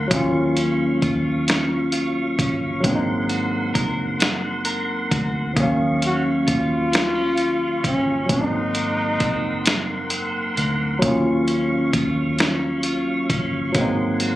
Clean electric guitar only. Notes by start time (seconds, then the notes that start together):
Already playing: G#2 A#3 C4
0.11 D#3
0.56 C#4
1.02 F4
1.48 C#4
1.93 F4
2.39 C#4
2.84 G#3
3.29 F#4
3.74 A#4
4.19 F#4
4.65 A#4
5.11 F#4
5.56 D#3
6.02 C#4
6.47 F4
6.92 B3
7.15 C#4
7.37 F4
7.83 C#4
8.29 G#2
8.74 A#3
9.20 C4
9.65 A#3
10.10 C4
10.56 A#3
11.02 D#3
11.47 C#4
11.93 F4
12.39 C#4
12.84 F4
13.30 C#4
13.75 G#3
14.21 F#4